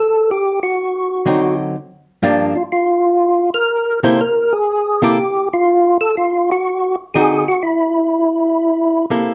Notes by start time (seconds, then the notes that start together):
Already playing: A4
0.31 G4
0.63 F#4
1.26 D3 F#3 C4 D#4
2.23 G2 F3 A#3 D4
2.55 F4
2.72 F4
3.54 A#4
4.03 C3 A#3 E4 A4 C5
4.21 A#4
4.53 G#4
5.02 C3 A#3 E4 G4 A4
5.53 F4
6.01 A4
6.17 F4
6.52 F#4
7.14 D3 C4 D#4 F#4 G#4
7.48 F#4
7.63 E4
9.10 C3 A#3 E4 A4